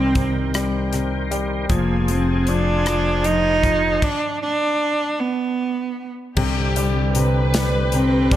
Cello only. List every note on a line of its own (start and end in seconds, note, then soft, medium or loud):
0.00 0.89 C4 loud
1.71 2.11 A#3 medium
2.10 2.49 C4 medium
2.48 3.27 D4 medium
3.26 4.05 D#4 loud
4.03 4.41 D4 medium
4.42 5.21 D4 loud
5.20 6.08 B3 medium
7.93 8.33 C4 medium
8.32 8.36 D4 medium